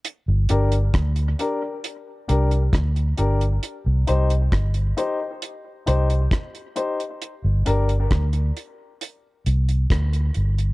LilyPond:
<<
  \new Staff \with { instrumentName = "Grand piano" } { \time 4/4 \key g \phrygian \tempo 4 = 67 r8 <d' g' bes'>16 r8. <d' g' bes'>16 <g' bes'>16 r8 <d' g' bes'>16 <g' bes'>16 r8 <d' g' bes'>16 r16 | r8 <ees' g' c''>16 r8. <ees' g' c''>16 <g' c''>16 r8 <ees' g' c''>16 <g' c''>16 r8 <ees' g' c''>16 r16 | r8 <d' g' bes'>16 r2. r16 | }
  \new Staff \with { instrumentName = "Fingered electric bass" } { \clef bass \time 4/4 \key g \phrygian r16 g,,16 g,,8 d,8 r4 c,8 d,8 g,,8 | r16 c,16 c,8 g,,8 r4 c,8 r4 | r16 g,,16 g,,8 d,8 r4 c,8 d,8 g,,8 | }
  \new DrumStaff \with { instrumentName = "Drums" } \drummode { \time 4/4 hh8 hh16 hh16 <hh bd ss>16 hh16 hh8 hh8 hh16 hh16 <hh bd ss>16 hh16 hh16 hh16 | hh8 hh16 hh16 <hh bd ss>16 hh16 hh8 hh8 hh16 hh16 <hh bd ss>16 hh16 hh16 hh16 | hh8 hh16 hh16 <hh bd ss>16 hh16 hh8 hh8 hh16 hh16 <hh bd ss>16 hh16 hh16 hh16 | }
>>